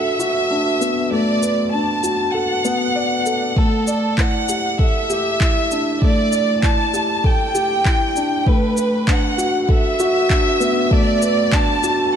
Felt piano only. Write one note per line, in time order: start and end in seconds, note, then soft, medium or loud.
0.00 1.11 A3 medium
0.00 0.50 D4 medium
0.00 0.19 F#4 medium
0.00 0.19 A4 medium
0.00 1.42 B4 medium
0.19 0.49 F#4 medium
0.50 0.68 D4 medium
0.81 1.10 B3 medium
1.11 1.41 A3 medium
1.42 1.71 B4 medium
1.73 1.91 D4 medium
2.03 2.33 F#4 medium
2.34 2.63 A4 medium
2.65 2.82 B3 medium
2.95 3.25 D5 medium
3.26 3.55 A4 medium
3.57 3.86 A3 medium
3.87 4.17 D5 medium
4.17 4.35 E4 medium
4.49 4.78 G4 medium
4.79 5.08 A4 medium
5.10 5.39 G4 loud
5.41 5.58 E4 medium
5.71 6.00 D4 medium
6.02 6.31 A3 loud
6.32 6.61 D5 medium
6.63 6.81 E4 medium
6.94 7.23 G4 medium
7.24 7.53 A4 medium
7.55 7.84 G4 loud
7.86 8.03 E4 medium
8.16 8.45 D4 medium
8.47 8.76 A3 loud
8.77 9.06 B4 medium
9.08 9.26 D4 medium
9.38 9.67 F#4 medium
9.69 9.98 A4 medium
10.00 10.29 F#4 loud
10.30 10.48 D4 medium
10.60 10.90 B3 medium
10.91 11.20 A3 loud
11.22 11.51 B4 loud
11.52 11.70 D4 medium
11.83 12.13 F#4 medium